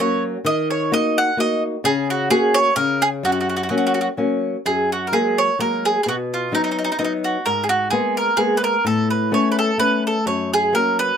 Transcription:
0.00 0.36 F#3 medium
0.00 0.37 A#3 soft
0.00 0.37 C#4 medium
0.00 0.23 C#5 medium
0.45 0.90 D#3 medium
0.45 0.69 D#5 medium
0.70 0.91 C#5 medium
0.92 1.29 A#3 medium
0.92 1.29 D#4 medium
0.92 1.29 F#4 medium
0.92 1.18 D#5 medium
1.18 1.38 F#5 medium
1.37 1.75 A#3 medium
1.37 1.75 D#4 medium
1.37 1.75 F#4 medium
1.37 1.62 D#5 medium
1.84 2.29 C#3 medium
1.84 2.10 G#4 medium
2.10 2.30 F#4 medium
2.30 2.68 A#3 medium
2.30 2.68 C#4 medium
2.30 2.68 F#4 medium
2.30 2.56 G#4 medium
2.54 2.75 C#5 loud
2.76 3.22 C#3 medium
2.76 3.02 A#4 loud
3.02 3.08 G#4 medium
3.23 3.69 F#2 medium
3.23 3.31 F#4 medium
3.32 3.39 F#4 soft
3.41 3.48 F#4 soft
3.50 3.55 F#4 soft
3.57 3.62 F#4 medium
3.63 3.68 F#4 soft
3.69 4.08 F#3 medium
3.69 4.08 A#3 soft
3.69 4.08 C#4 medium
3.69 3.76 F#4 soft
3.78 3.84 F#4 soft
3.87 3.93 F#4 medium
3.94 4.00 F#4 soft
4.01 4.07 F#4 medium
4.17 4.55 F#3 soft
4.17 4.56 A#3 soft
4.17 4.56 C#4 medium
4.66 5.11 F#2 medium
4.66 4.89 G#4 medium
4.92 5.07 F#4 medium
5.07 5.12 A#4 soft
5.12 5.50 F#3 soft
5.12 5.50 G#3 soft
5.12 5.50 A#3 medium
5.12 5.38 G#4 medium
5.38 5.60 C#5 medium
5.59 5.96 F#3 soft
5.59 5.97 G#3 soft
5.59 5.97 A#3 medium
5.59 5.83 A#4 medium
5.85 6.00 G#4 medium
6.03 6.51 B2 medium
6.03 6.07 G#4 medium
6.09 6.15 F#4 medium
6.34 6.54 F4 medium
6.52 6.89 F#3 medium
6.52 6.89 B3 soft
6.52 6.90 D#4 medium
6.52 6.61 D#4 medium
6.64 6.70 D#4 soft
6.71 6.77 D#4 soft
6.79 6.83 D#4 soft
6.85 6.90 D#4 medium
6.92 6.97 D#4 medium
6.99 7.36 F#3 soft
6.99 7.36 B3 soft
6.99 7.03 D#4 medium
6.99 7.36 D#4 medium
7.04 7.12 D#4 medium
7.24 7.46 F#4 medium
7.46 7.91 G#2 medium
7.46 7.63 A#4 medium
7.64 7.69 G#4 soft
7.69 7.90 F#4 medium
7.90 8.29 G#3 medium
7.90 8.29 A#3 soft
7.90 8.30 B3 medium
7.90 8.14 G#4 medium
8.17 8.37 A#4 medium
8.37 8.76 G#3 medium
8.37 8.76 A#3 soft
8.37 8.76 B3 medium
8.37 8.55 G#4 medium
8.57 8.63 B4 medium
8.64 8.84 A#4 medium
8.85 9.30 A2 medium
8.85 9.10 A4 medium
9.10 9.33 B4 medium
9.32 9.69 A3 medium
9.32 9.70 B3 soft
9.32 9.70 C#4 medium
9.32 9.51 C#5 medium
9.52 9.58 B4 medium
9.59 9.78 A4 medium
9.78 10.16 A3 soft
9.78 10.17 B3 soft
9.78 10.17 C#4 soft
9.78 10.03 B4 medium
10.07 10.26 A4 medium
10.26 10.72 F#2 medium
10.26 10.50 C#5 medium
10.54 10.73 G#4 medium
10.73 11.10 F#3 soft
10.73 11.11 A#3 soft
10.73 11.11 C#4 medium
10.73 10.97 A#4 medium
10.99 11.17 B4 medium

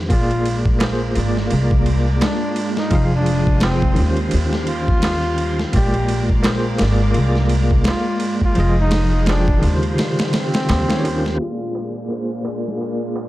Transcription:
0.09 1.13 A#1 medium
0.09 4.29 G#3 medium
0.09 0.76 A#3 medium
0.09 0.60 F4 medium
0.09 0.77 F4 medium
0.09 0.78 G#4 medium
0.09 8.53 F5 medium
0.09 2.90 A#5 medium
0.09 2.90 D6 medium
0.09 kick loud
0.09 ride medium
0.13 0.79 D5 medium
0.31 ride soft
0.46 ride medium
0.66 kick medium
0.79 1.11 A#3 medium
0.79 1.12 F4 medium
0.79 1.13 G#4 medium
0.79 snare loud
0.79 ride medium
0.79 darbuka tek medium
0.84 1.14 C5 medium
1.15 1.48 G#1 medium
1.15 1.46 A#3 medium
1.15 1.48 F4 medium
1.15 1.49 G#4 medium
1.15 ride medium
1.20 1.49 D5 medium
1.37 snare soft
1.47 2.87 A#3 medium
1.47 2.88 F4 medium
1.47 ride medium
1.52 2.19 C2 medium
1.52 2.90 G#4 medium
1.57 2.91 D5 medium
1.71 kick medium
1.86 ride medium
2.21 2.72 D4 medium
2.21 snare loud
2.21 ride medium
2.21 darbuka tek medium
2.56 ride medium
2.77 3.09 D#4 medium
2.77 snare medium
2.90 3.95 F1 medium
2.90 3.58 F3 medium
2.90 3.59 F4 medium
2.90 3.60 G#4 medium
2.90 4.31 C6 medium
2.90 4.31 D#6 medium
2.90 kick loud
2.90 ride medium
2.95 3.61 F5 medium
3.15 3.60 D4 loud
3.26 ride medium
3.47 kick medium
3.60 3.94 F3 medium
3.60 4.13 C4 medium
3.60 3.94 F4 medium
3.60 3.95 G#4 medium
3.60 snare loud
3.60 ride medium
3.60 darbuka tek medium
3.66 3.96 G5 medium
3.82 kick medium
3.93 5.69 D#3 medium
3.93 5.70 C#4 medium
3.93 ride medium
3.98 4.30 D#2 medium
3.98 5.71 F4 medium
3.98 5.72 G4 medium
4.03 5.74 C5 medium
4.17 ride soft
4.31 5.63 D#2 loud
4.31 5.73 G4 medium
4.31 5.73 C6 medium
4.31 ride medium
4.53 snare medium
4.67 5.63 F4 loud
4.67 ride medium
4.88 kick medium
5.02 snare loud
5.02 ride medium
5.02 darbuka tek medium
5.38 ride medium
5.59 snare soft
5.73 6.77 A#1 medium
5.73 9.94 G#3 medium
5.73 6.42 G#3 medium
5.73 6.41 A#3 medium
5.73 6.41 F4 medium
5.73 6.24 G4 medium
5.73 8.54 A#5 medium
5.73 8.54 D6 medium
5.73 kick loud
5.73 ride medium
5.77 6.43 D5 medium
5.94 ride soft
6.09 ride medium
6.30 kick medium
6.43 6.76 A#3 medium
6.43 6.76 F4 medium
6.43 6.77 G#4 medium
6.43 snare loud
6.43 ride medium
6.43 darbuka tek medium
6.48 6.78 C5 loud
6.78 7.12 G#1 medium
6.78 7.09 A#3 medium
6.78 7.12 F4 medium
6.78 7.13 G#4 medium
6.78 snare loud
6.78 ride medium
6.83 7.14 D5 medium
7.11 8.51 A#3 medium
7.11 8.53 F4 medium
7.11 ride medium
7.16 7.84 C2 loud
7.16 8.54 G#4 medium
7.21 8.56 D5 medium
7.36 snare soft
7.49 ride medium
7.71 kick medium
7.84 8.37 F4 medium
7.84 snare loud
7.84 ride medium
7.84 darbuka tek medium
8.20 ride medium
8.42 8.75 F4 medium
8.42 kick medium
8.55 9.60 F1 medium
8.55 9.23 F3 medium
8.55 9.24 F4 medium
8.55 9.25 G#4 medium
8.55 11.37 F5 medium
8.55 11.37 C6 medium
8.55 9.97 D#6 medium
8.55 ride medium
8.60 9.25 D#5 loud
8.81 9.25 D#4 loud
8.91 snare loud
8.91 ride medium
9.26 9.58 F3 medium
9.26 9.78 D4 medium
9.26 9.59 F4 medium
9.26 9.60 G#4 medium
9.26 snare loud
9.26 ride medium
9.26 darbuka tek medium
9.31 9.61 G5 medium
9.48 kick medium
9.59 10.85 C#3 medium
9.59 10.83 D#3 medium
9.59 ride medium
9.64 9.95 D#2 medium
9.64 10.86 F4 medium
9.64 10.87 G4 medium
9.69 10.88 C5 medium
9.83 ride soft
9.98 11.38 G4 medium
9.98 snare loud
9.98 ride medium
10.19 snare loud
10.19 ride medium
10.33 11.28 C4 loud
10.33 snare loud
10.33 ride medium
10.54 snare loud
10.54 ride medium
10.69 11.37 D#2 medium
10.69 snare loud
10.69 ride medium
10.69 darbuka tek medium
10.88 11.00 D#3 medium
10.88 11.01 C#4 medium
10.88 11.01 F4 medium
10.88 11.02 G4 medium
10.88 snare medium
10.88 ride medium
10.93 11.02 C#5 medium
11.04 11.36 D#3 medium
11.04 11.36 C#4 medium
11.04 11.37 F4 medium
11.04 11.37 G4 medium
11.04 ride medium
11.08 11.38 C5 medium
11.26 snare medium
11.38 12.06 A#3 medium
11.38 13.29 A#3 medium
11.38 12.07 F4 medium
11.38 11.90 F4 medium
11.38 13.29 G#4 medium
11.38 13.29 D5 medium
11.38 13.29 F5 medium
11.38 ride medium
11.38 darbuka tek soft
11.43 12.08 D5 medium
11.61 ride soft
11.75 ride medium
11.75 darbuka tek medium
11.96 darbuka tek soft
12.08 12.41 A#3 medium
12.08 12.42 F4 medium
12.08 12.42 G#4 medium
12.08 ride medium
12.08 darbuka tek soft
12.13 12.43 C5 medium
12.44 12.76 A#3 medium
12.44 12.77 F4 medium
12.44 12.78 G#4 medium
12.44 ride medium
12.44 darbuka tek medium
12.48 12.78 D5 medium
12.66 snare soft
12.66 darbuka tek soft
12.77 13.29 A#3 medium
12.77 13.29 F4 medium
12.77 ride medium
12.77 darbuka tek soft
12.83 13.29 G#4 medium
12.83 13.29 D5 medium
13.16 ride medium
13.16 darbuka tek medium

